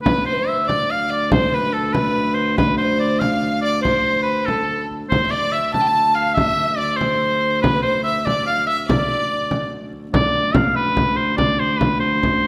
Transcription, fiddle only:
0.05 B4
0.27 C5
0.34 B4
0.40 C5
0.67 D5
0.90 F5
1.10 D5
1.31 C5
1.54 B4
1.72 A4
1.95 B4
2.58 B4
2.79 C5
3.20 F5
3.64 D5
3.83 C5
4.49 A4
5.11 C5
5.26 E5
5.32 D5
5.53 E5
5.74 A5
5.81 G5
5.87 A5
6.15 F5
6.38 E5
6.79 D5
7.01 C5
7.63 B4
7.84 C5
8.05 E5
8.27 D5
8.47 F5
8.68 E5
8.88 D5

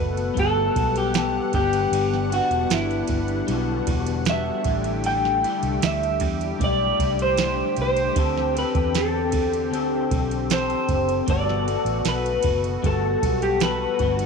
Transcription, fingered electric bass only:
Already playing: F#1
0.36 G1
0.76 B1
1.54 G1
1.92 G1
2.50 E1
2.70 G1
3.09 G1
3.48 B1
3.87 E1
4.65 A1
5.63 C2
5.82 D2
6.21 E2
6.60 B1
6.99 C2
7.78 C2
8.16 D2
8.75 E2
9.72 D2
10.11 B1
10.88 F#1
11.28 G1
11.85 A1
12.05 B1
12.44 F#1
12.84 G1
13.23 B1
14.00 G1

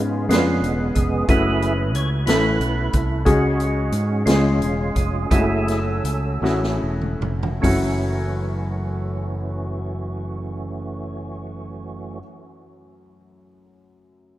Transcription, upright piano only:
Already playing: C#3 B3 C#4 F4 G#4
0.29 B3 C#4 D4 B4
0.37 F4
1.28 A3 C#4 E4 F#4
2.27 A3 C#4 E4 A4
3.25 C#3 G#3 C#4 F#4 G#4
4.26 C#3 G#3 C#4 F4 G#4
5.31 G#3 C#4 E4 F#4
5.38 A3
6.42 A3 C#4 E4 F#4
7.61 F#2 A3 C#4 E4
7.66 F#4

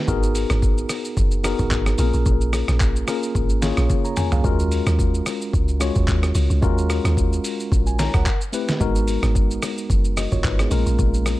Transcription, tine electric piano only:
0.07 B3 D#4 F#4 G#4 A#4
1.43 B3 D#4 F#4 G#4 A#4
1.98 A#3 C4 F4 G#4 A#4
2.05 C#4
3.06 A#3 C#4 F4 G#4 A#4
3.61 A#3 C#4 F4 G#4 C#5
4.05 C#5 A#5
4.17 G#5
4.32 G#4 F5
4.43 G#3 C#4 F4 F#4 A#4
5.80 G#3 C#4 F4 F#4 C#5
6.61 G#3 C#4 F4 F#4 A#4
7.87 G#5
7.99 C#5 A#5
8.14 A#4 F#5
8.52 A3 C4 E4 G4 B4
8.80 G#3 B3 D#4 F#4 A#4
10.17 F#4 D#5
10.32 F4 C#5
10.44 D#4 B4
10.59 B3 G#4
10.70 G#3 A#3 C#4 F4 A#4

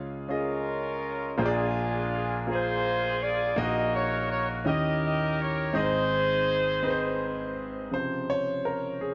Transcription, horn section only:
0.32 C#4 F4 A#4
1.42 D4 F4 G#4
2.15 G#4
2.51 F4 G#4 C5
3.23 D5
3.59 F#4 A#4 D#5
3.96 C#5
4.32 C#5
4.67 G4 A#4 D#5
5.05 D#5
5.40 C#5
5.76 D#4 G#4 C5

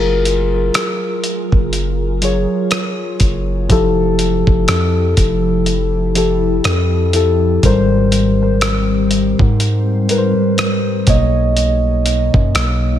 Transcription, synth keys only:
Already playing: F#3 F4 G#4 A#4
0.53 F#3 F4 G#4 A#4
2.21 F#3 F4 G#4 C#5
3.69 F3 E4 G4 A4
6.15 F3 E4 G4 A4
7.13 F3 E4 G4 A4
7.62 G#2 G3 A#4 C5
8.40 G#2 G3 A#4 C5
10.08 G#2 G3 A#4 B4
10.18 C5
11.07 B2 A#3 C#5 D#5

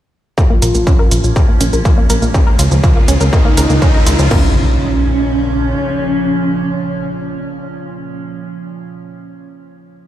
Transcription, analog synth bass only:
0.62 A#1
0.75 A#1
1.11 A#1
1.24 A#1
1.61 A#1
1.73 A#1
2.10 A#1
2.22 A#1
2.59 C#2
2.71 C#2
3.08 C#2
3.21 C#2
3.57 C#2
3.70 C#2
4.07 C#2
4.19 C#2
4.31 A#1

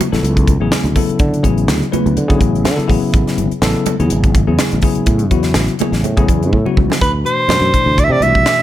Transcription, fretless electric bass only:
0.00 muted fretless electric bass stroke
0.13 A1
0.23 C#2
0.60 A1
0.84 D2
1.10 muted fretless electric bass stroke
1.20 D3
1.43 A1
1.68 D2
1.94 muted fretless electric bass stroke
2.06 D2
2.17 D3
2.40 A1
2.65 D3
2.79 muted fretless electric bass stroke
2.89 A1
3.03 muted fretless electric bass stroke
3.13 A1
3.28 muted fretless electric bass stroke
3.38 G#1
3.52 muted fretless electric bass stroke
3.62 A1
3.86 muted fretless electric bass stroke
4.00 E2
4.11 G#1
4.48 E2
4.73 A1
4.97 muted fretless electric bass stroke
5.06 A2
5.31 E2
5.55 A1
5.80 muted fretless electric bass stroke
5.92 A1
6.03 A2
6.28 E2
6.52 A2
6.66 muted fretless electric bass stroke
6.77 C#2
6.89 muted fretless electric bass stroke
7.01 D2
7.48 F#2
7.61 F#2
7.86 D2
8.10 C3
8.20 C2

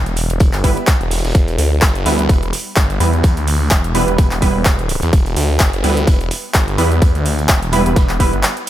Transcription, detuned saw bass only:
Already playing: E1
0.30 E1
0.54 G1
1.01 E1
1.25 E1
1.35 E1
1.59 D2
1.82 F#1
2.06 D2
2.29 E1
2.77 G1
3.00 E2
3.37 D2
3.71 E1
4.08 E1
4.32 E1
4.55 E1
5.03 E2
5.13 E1
5.37 D2
5.60 F#1
5.84 D2
6.07 E1
6.55 G1
6.78 E2
7.15 D2
7.49 E1
7.86 E1
8.10 E1
8.33 G1

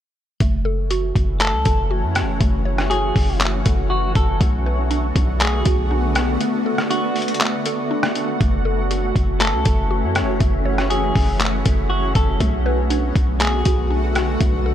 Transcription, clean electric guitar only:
1.40 A4
2.90 G#4
3.90 F#4
4.16 A4
5.41 G#4
6.90 F#4
9.40 A4
10.90 G#4
11.90 F#4
12.16 A4
13.41 G#4

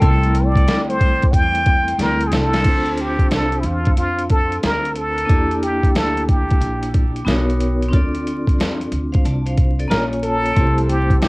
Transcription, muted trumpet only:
0.00 A4
0.45 D5
0.89 C5
1.33 G5
2.02 A#4
2.28 G#4
2.34 A4
3.01 G4
3.34 A4
3.60 E4
3.66 F4
3.98 F4
4.31 A4
4.64 A#4
4.97 A4
5.63 G4
5.97 A4
6.28 G4
9.90 A#4
10.23 A4
10.89 G4
11.22 G4

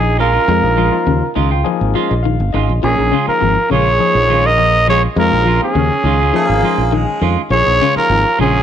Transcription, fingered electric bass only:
Already playing: A#1
0.48 F2
0.63 A#1
1.07 D#2
1.36 C#2
1.81 G#1
2.11 A#1
2.40 G1
2.54 G#1
2.69 A#1
2.84 A#1
2.99 A#1
3.28 muted fingered electric bass stroke
3.42 G#1
3.71 A#1
4.15 A#1
5.16 F2
5.32 A#1
5.75 D#2
6.04 C#2
6.49 G#1
6.64 muted fingered electric bass stroke
6.78 A#1
7.21 F2
7.50 A#1
7.67 A#1
7.96 muted fingered electric bass stroke
8.10 G#1
8.39 A#1

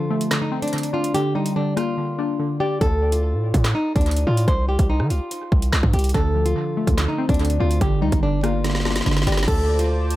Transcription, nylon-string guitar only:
Already playing: F4
0.41 D#4
0.62 D4
0.94 F4
1.14 G4
1.35 D#4
1.56 D4
1.77 F4
2.60 G4
2.81 A4
3.12 F4
3.75 D#4
3.96 D4
4.27 F4
4.48 C5
4.69 G4
4.90 D#4
5.10 F4
5.94 G4
6.15 A4
6.46 F4
7.08 D#4
7.29 D4
7.60 F4
7.81 G4
8.02 D#4
8.23 D4
8.44 F4
9.27 G4
9.48 A4
9.79 F4

